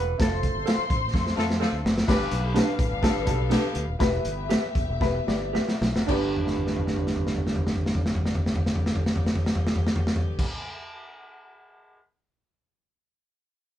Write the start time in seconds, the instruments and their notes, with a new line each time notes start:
Already playing: fingered electric bass E1, saxophone section F3 D4 A4, hollow-body jazz guitar B4
0.18 fingered electric bass F1, upright piano A3 C4 F4 A4, string section C5 C6, kick, snare, closed hi-hat
0.22 hollow-body jazz guitar A4
0.43 kick, closed hi-hat
0.55 fingered electric bass G1
0.66 clean electric guitar A4 C5 F5, snare, closed hi-hat
0.78 muted fingered electric bass stroke
0.90 fingered electric bass A1, saxophone section F3 C4 A4, kick, closed hi-hat
1.14 fingered electric bass F2, saxophone section F3 C4 A4, kick, snare
1.27 snare
1.36 fingered electric bass F2, saxophone section F3 C4 A4, upright piano A3 C4 F4 A4, snare
1.50 snare
1.60 saxophone section F3 C4 A4, clean electric guitar A4 C5 F5, snare
1.73 fingered electric bass D2
1.85 fingered electric bass F#1, snare
1.98 snare
2.07 fingered electric bass G1, upright piano G2 B3 D4 G4 B4, saxophone section G3 D4 B4, string section D4 B4 F5, kick, snare, crash
2.31 fingered electric bass B1, closed hi-hat
2.43 saxophone section D3 B3 G4
2.54 clean electric guitar D4 G4 B4, snare, closed hi-hat
2.79 fingered electric bass A1, kick, closed hi-hat
2.91 fingered electric bass G1
3.02 saxophone section D3 B3 A4, upright piano B3 D4 G4 A4, kick, snare, closed hi-hat
3.25 fingered electric bass B1, upright piano B3 D4 G4 A4, kick, closed hi-hat
3.50 saxophone section D3 B3 G4, clean electric guitar D4 G4 B4, snare, closed hi-hat
3.75 fingered electric bass D2, closed hi-hat
3.88 fingered electric bass D#1
3.99 fingered electric bass E1, upright piano E3 B3 E4 G4 B4, string section B3 G4 E5, kick, snare, closed hi-hat
4.25 fingered electric bass G1, closed hi-hat
4.49 clean electric guitar G4 B4 E5, snare, closed hi-hat
4.75 fingered electric bass F1, kick, closed hi-hat
4.88 fingered electric bass E1
5.01 upright piano B3 E4 G4 B4, kick, snare
5.27 fingered electric bass G1, upright piano B3 E4 G4 D5, snare
5.53 clean electric guitar G4 B4 E5, snare
5.68 snare
5.81 fingered electric bass B1, snare
5.95 fingered electric bass F#1, snare
6.06 fingered electric bass G1, upright piano G2 B3 D4 G4, saxophone section D3 B3 G4, string section B3 G4 D5, clean electric guitar D4 G4, kick, crash
6.11 upright piano B4, clean electric guitar B4
6.36 floor tom
6.47 snare
6.56 floor tom
6.67 snare
6.76 floor tom
6.87 snare
6.96 floor tom
7.07 snare
7.16 floor tom
7.27 snare
7.35 floor tom
7.47 snare
7.56 floor tom
7.67 snare
7.76 floor tom
7.86 snare
7.95 floor tom
8.06 snare
8.15 floor tom
8.26 snare
8.35 floor tom
8.46 snare
8.56 floor tom
8.66 snare
8.76 floor tom
8.86 snare
8.96 floor tom
9.06 snare
9.16 floor tom
9.26 snare
9.35 floor tom
9.46 snare
9.55 floor tom
9.67 snare
9.76 floor tom
9.87 snare
9.96 floor tom
10.07 snare
10.16 floor tom
10.39 kick, crash